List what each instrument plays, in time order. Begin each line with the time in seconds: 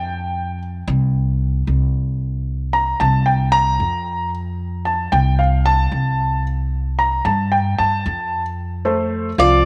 Already playing: upright bass F2, grand piano G5
0.87 upright bass C2
1.67 upright bass C2
2.73 grand piano A#5
3.00 upright bass C2, grand piano A5
3.26 grand piano G5
3.52 grand piano A#5
3.80 upright bass F2
4.85 grand piano A5
5.12 upright bass C2, grand piano G5
5.39 grand piano F5
5.66 grand piano A5
5.92 upright bass C2
6.99 grand piano A#5
7.25 upright bass G2, grand piano A5
7.52 grand piano G5
7.79 upright bass G2, grand piano A5
8.06 upright bass F2
8.85 grand piano A3 A4 C5
9.38 upright bass C2, grand piano F3 F4 F5, cuban tres D5